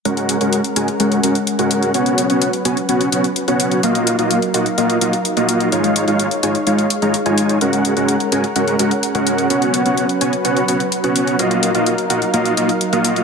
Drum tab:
HH |xxxxxxxxxxxxxxxx|xxxxxxxxxxxxxxxx|xxxxxxxxxxxxxxxx|xxxxxxxxxxxxxxxx|

HH |xxxxxxxxxxxxxxxx|xxxxxxxxxxxxxxxx|xxxxxxxxxxxxxxxx|